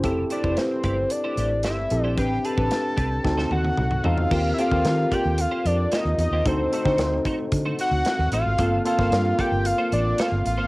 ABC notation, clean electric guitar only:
X:1
M:4/4
L:1/16
Q:1/4=112
K:Eblyd
V:1 name="Clean electric guitar"
[A,=EGc] z [A,EGc] [A,EGc] z2 [A,EGd] z2 [A,EGc] [A,EGc] z [A,EGc] z2 [A,EGc] | [CDG=B] z [CDGB] [CDGB] z2 [CDGB] z2 [A,E^Fc] [A,EFc] z3 [A,EFc] z | [B,FGc] z [B,FGc] [B,FGc] z2 [B,FGd] z2 [B,FGc] [B,FGc] z [B,FGc] z2 [B,FGc] | [A,E^Fc] z [A,EFc] [A,EFc] z2 [A,EFc] z2 [A,EFc] [A,EFc] z3 [A,EFc] z |
[B,FAc] z [B,FAc] [B,FAc] z2 [B,FAd] z2 [B,FAc] [B,FAc] z [B,FAc] z2 [B,FAc] |]